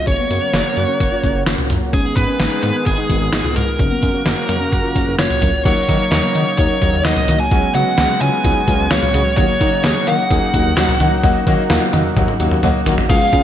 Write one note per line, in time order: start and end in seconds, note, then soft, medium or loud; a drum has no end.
0.00 1.90 C#3 medium
0.07 0.16 F#1 loud
0.07 1.91 F#3 medium
0.07 1.91 A#3 medium
0.07 0.17 C#4 medium
0.07 1.91 F#4 medium
0.07 1.43 C#5 medium
0.07 kick loud
0.07 closed hi-hat medium
0.19 0.38 B3 medium
0.30 0.39 F#2 loud
0.30 closed hi-hat medium
0.42 0.52 C#4 medium
0.54 0.62 F#1 loud
0.54 0.73 F#4 medium
0.54 snare loud
0.54 closed hi-hat medium
0.77 0.86 F#2 loud
0.77 0.87 F#4 medium
0.77 closed hi-hat medium
0.89 1.08 C#4 medium
1.00 1.09 F#1 medium
1.00 kick medium
1.00 closed hi-hat medium
1.12 1.22 F4 medium
1.23 1.32 F#1 loud
1.23 1.43 C#4 medium
1.23 kick medium
1.23 closed hi-hat medium
1.35 1.44 F#1 medium
1.46 1.55 F#1 loud
1.46 1.56 F4 medium
1.46 snare loud
1.46 closed hi-hat medium
1.58 1.68 F#4 medium
1.58 mid tom medium
1.70 1.79 F#2 medium
1.70 1.89 F4 medium
1.70 closed hi-hat medium
1.70 mid tom medium
1.93 2.02 G#1 medium
1.93 3.77 D#3 medium
1.93 3.77 G#3 medium
1.93 3.77 B3 medium
1.93 2.03 C#4 medium
1.93 3.77 G#4 medium
1.93 2.16 G#4 loud
1.93 kick loud
1.93 closed hi-hat medium
2.05 2.24 B3 medium
2.17 2.25 G#2 loud
2.17 2.62 B4 loud
2.17 kick medium
2.17 closed hi-hat medium
2.28 2.38 C#4 medium
2.40 2.48 G#1 loud
2.40 2.59 D#4 medium
2.40 snare loud
2.40 closed hi-hat medium
2.63 2.72 G#2 loud
2.63 2.73 D#4 medium
2.63 2.85 B4 medium
2.63 closed hi-hat medium
2.75 2.94 B3 medium
2.86 2.95 G#1 loud
2.86 3.56 G#4 medium
2.86 kick medium
2.86 closed hi-hat medium
2.98 3.08 D#4 medium
3.10 3.18 G#1 medium
3.10 3.29 B3 medium
3.10 kick medium
3.10 closed hi-hat medium
3.21 3.30 G#1 medium
3.33 3.42 G#1 medium
3.33 3.42 D#4 medium
3.33 snare loud
3.33 closed hi-hat medium
3.44 3.54 F4 medium
3.44 mid tom medium
3.56 3.65 G#2 medium
3.56 3.75 D#4 medium
3.56 5.15 A#4 medium
3.56 closed hi-hat medium
3.56 mid tom medium
3.79 3.88 F#1 loud
3.79 5.64 C#3 medium
3.79 5.64 F#3 medium
3.79 5.64 A#3 medium
3.79 3.89 C#4 medium
3.79 5.64 F#4 medium
3.79 kick loud
3.79 closed hi-hat medium
3.91 4.10 B3 medium
4.03 4.11 F#2 loud
4.03 kick medium
4.03 closed hi-hat medium
4.14 4.24 C#4 medium
4.26 4.35 F#1 loud
4.26 4.45 F#4 medium
4.26 snare loud
4.26 closed hi-hat medium
4.49 4.58 F#2 medium
4.49 4.59 F#4 medium
4.49 closed hi-hat medium
4.49 mid tom medium
4.61 4.80 C#4 medium
4.72 4.81 F#1 loud
4.72 kick medium
4.72 closed hi-hat medium
4.84 4.94 F4 medium
4.96 5.04 F#1 medium
4.96 5.15 C#4 medium
4.96 kick medium
4.96 closed hi-hat medium
5.07 5.16 F#1 loud
5.19 5.28 F#1 loud
5.19 5.29 F4 medium
5.19 5.62 C#5 medium
5.19 snare loud
5.19 closed hi-hat medium
5.30 5.40 F#4 medium
5.30 mid tom medium
5.42 5.51 F#2 loud
5.42 5.61 F4 medium
5.42 kick medium
5.42 closed hi-hat medium
5.42 mid tom medium
5.65 5.74 D#2 loud
5.65 13.06 C#3 medium
5.65 5.79 F#3 medium
5.65 7.50 F#3 medium
5.65 5.79 A#3 medium
5.65 7.50 A#3 medium
5.65 5.79 D#4 medium
5.65 7.50 D#4 medium
5.65 5.79 F#4 loud
5.65 6.11 C#5 medium
5.65 kick loud
5.65 closed hi-hat medium
5.65 crash medium
5.89 5.97 D#3 loud
5.89 6.02 F#3 medium
5.89 6.02 A#3 medium
5.89 6.02 D#4 medium
5.89 6.02 F#4 loud
5.89 kick medium
5.89 closed hi-hat medium
6.12 6.21 D#2 loud
6.12 6.26 F#3 medium
6.12 6.26 A#3 medium
6.12 6.26 D#4 medium
6.12 6.26 F#4 medium
6.12 6.57 C#5 medium
6.12 snare loud
6.12 closed hi-hat medium
6.35 6.44 D#3 medium
6.35 6.49 F#3 medium
6.35 6.49 A#3 medium
6.35 6.49 D#4 medium
6.35 6.49 F#4 medium
6.35 closed hi-hat medium
6.58 6.67 D#2 loud
6.58 6.72 F#3 medium
6.58 6.72 A#3 medium
6.58 6.72 D#4 medium
6.58 6.72 F#4 medium
6.58 7.02 C#5 medium
6.58 kick medium
6.58 closed hi-hat medium
6.82 6.90 D#2 loud
6.82 6.95 F#3 medium
6.82 6.95 A#3 medium
6.82 6.95 D#4 medium
6.82 6.95 F#4 medium
6.82 kick medium
6.82 closed hi-hat medium
6.93 7.02 D#2 loud
7.05 7.14 D#2 loud
7.05 7.19 F#3 medium
7.05 7.19 A#3 medium
7.05 7.19 D#4 medium
7.05 7.19 F#4 loud
7.05 7.37 D#5 medium
7.05 snare loud
7.05 closed hi-hat medium
7.16 mid tom medium
7.28 7.37 D#3 loud
7.28 7.42 F#3 medium
7.28 7.42 A#3 medium
7.28 7.42 D#4 medium
7.28 7.42 F#4 medium
7.28 closed hi-hat medium
7.28 mid tom medium
7.40 7.74 G#5 loud
7.51 7.60 C#2 loud
7.51 7.65 F#3 medium
7.51 7.65 G#3 medium
7.51 9.36 G#3 medium
7.51 9.36 B3 medium
7.51 7.65 C#4 medium
7.51 7.65 F#4 loud
7.51 13.06 F#4 medium
7.51 kick loud
7.51 closed hi-hat medium
7.75 7.83 C#3 loud
7.75 7.89 F#3 medium
7.75 7.88 G#3 medium
7.75 7.89 C#4 medium
7.75 7.88 F#4 loud
7.75 8.21 F#5 loud
7.75 closed hi-hat medium
7.98 8.07 C#2 loud
7.98 8.12 F#3 medium
7.98 8.12 G#3 medium
7.98 8.12 C#4 medium
7.98 8.12 F#4 medium
7.98 snare loud
7.98 closed hi-hat medium
8.21 8.30 C#3 loud
8.21 8.35 F#3 medium
8.21 8.35 G#3 medium
8.21 8.35 C#4 medium
8.21 8.35 F4 medium
8.21 8.93 G#5 loud
8.21 closed hi-hat medium
8.44 8.53 C#2 loud
8.44 8.58 F#3 medium
8.44 8.58 G#3 medium
8.44 8.58 C#4 medium
8.44 8.58 D#4 medium
8.44 kick medium
8.44 closed hi-hat medium
8.68 8.76 C#2 loud
8.68 8.81 F#3 medium
8.68 8.81 G#3 medium
8.68 8.81 C#4 medium
8.68 8.81 F4 medium
8.68 kick medium
8.68 closed hi-hat medium
8.79 8.88 C#2 loud
8.91 9.00 C#2 medium
8.91 9.05 F#3 loud
8.91 9.05 G#3 medium
8.91 9.05 C#4 medium
8.91 9.05 F4 loud
8.91 9.36 C#5 medium
8.91 snare loud
8.91 closed hi-hat medium
9.02 mid tom medium
9.14 9.23 C#3 loud
9.14 9.28 F#3 medium
9.14 9.28 G#3 medium
9.14 9.28 C#4 medium
9.14 9.28 F#4 medium
9.14 closed hi-hat medium
9.14 mid tom medium
9.37 9.46 D#2 loud
9.37 9.51 F#3 medium
9.37 9.51 A#3 medium
9.37 13.06 A#3 medium
9.37 9.51 D#4 medium
9.37 13.06 D#4 medium
9.37 9.51 F#4 loud
9.37 9.83 C#5 medium
9.37 kick loud
9.37 closed hi-hat medium
9.61 9.69 D#3 loud
9.61 9.75 F#3 medium
9.61 9.75 A#3 medium
9.61 9.75 D#4 medium
9.61 9.75 F#4 loud
9.61 kick medium
9.61 closed hi-hat medium
9.84 9.93 D#2 loud
9.84 9.98 F#3 medium
9.84 9.98 A#3 medium
9.84 9.98 D#4 medium
9.84 9.98 G#4 medium
9.84 10.08 C#5 medium
9.84 snare loud
9.84 closed hi-hat medium
10.07 10.16 D#3 loud
10.07 10.21 F#3 medium
10.07 10.21 A#3 medium
10.07 10.21 D#4 medium
10.07 10.21 F#4 medium
10.07 12.59 F#5 medium
10.07 closed hi-hat medium
10.30 10.39 D#2 loud
10.30 10.44 F#3 medium
10.30 10.44 A#3 medium
10.30 10.44 D#4 medium
10.30 10.44 G#4 medium
10.30 kick medium
10.30 closed hi-hat medium
10.54 10.62 D#2 loud
10.54 10.68 F#3 medium
10.54 10.68 A#3 medium
10.54 10.68 D#4 medium
10.54 10.68 F#4 medium
10.54 kick medium
10.54 closed hi-hat medium
10.65 10.74 D#2 medium
10.77 10.86 D#2 loud
10.77 10.91 F#3 loud
10.77 10.91 A#3 loud
10.77 10.91 D#4 loud
10.77 10.91 F#4 loud
10.77 snare loud
10.77 closed hi-hat medium
10.89 mid tom medium
11.00 11.09 D#3 loud
11.00 11.14 F#3 medium
11.00 11.14 A#3 medium
11.00 11.14 D#4 medium
11.00 11.14 F#4 loud
11.00 closed hi-hat medium
11.00 mid tom medium
11.23 11.32 D#2 loud
11.23 11.37 F#3 loud
11.23 11.37 A#3 loud
11.23 11.37 D#4 loud
11.23 11.37 F#4 loud
11.23 kick loud
11.23 closed hi-hat medium
11.47 11.55 D#3 loud
11.47 11.61 F#3 loud
11.47 11.61 A#3 loud
11.47 11.61 D#4 loud
11.47 11.61 F#4 loud
11.47 kick medium
11.47 closed hi-hat medium
11.70 11.79 D#2 loud
11.70 11.84 F#3 medium
11.70 11.84 A#3 medium
11.70 11.84 D#4 medium
11.70 11.84 F4 loud
11.70 snare loud
11.70 closed hi-hat medium
11.93 12.02 D#3 loud
11.93 12.07 F#3 medium
11.93 12.07 A#3 medium
11.93 12.07 D#4 medium
11.93 12.07 F#4 loud
11.93 closed hi-hat medium
11.93 mid tom medium
12.16 12.25 D#2 loud
12.16 12.30 F#3 medium
12.16 12.30 A#3 medium
12.16 12.30 D#4 medium
12.16 12.30 F#4 loud
12.16 kick medium
12.16 closed hi-hat medium
12.16 high tom medium
12.28 high tom medium
12.40 12.48 D#2 loud
12.40 12.54 F#3 medium
12.40 12.54 A#3 medium
12.40 12.54 D#4 medium
12.40 12.54 F#4 loud
12.40 closed hi-hat medium
12.51 12.60 D#2 loud
12.51 mid tom medium
12.63 12.72 D#2 loud
12.63 12.77 F#3 loud
12.63 12.77 A#3 loud
12.63 12.77 D#4 loud
12.63 12.77 F#4 loud
12.63 closed hi-hat medium
12.63 mid tom medium
12.86 12.95 D#3 loud
12.86 13.00 F#3 medium
12.86 13.00 A#3 medium
12.86 13.00 D#4 medium
12.86 13.00 F#4 loud
12.86 closed hi-hat medium
12.86 floor tom loud
12.98 floor tom medium
13.10 13.18 C#2 loud
13.10 13.43 C#3 medium
13.10 13.43 F3 medium
13.10 13.43 G#3 medium
13.10 13.23 G#3 medium
13.10 13.19 C#4 loud
13.10 13.23 C#4 medium
13.10 13.43 F4 medium
13.10 13.23 F4 medium
13.10 13.23 G#4 loud
13.10 13.43 F5 loud
13.10 kick loud
13.10 closed hi-hat medium
13.10 crash loud
13.21 13.41 B3 medium
13.33 13.42 C#3 loud
13.33 13.43 G#3 medium
13.33 13.43 C#4 medium
13.33 13.43 F4 medium
13.33 13.43 G#4 medium
13.33 kick medium
13.33 closed hi-hat medium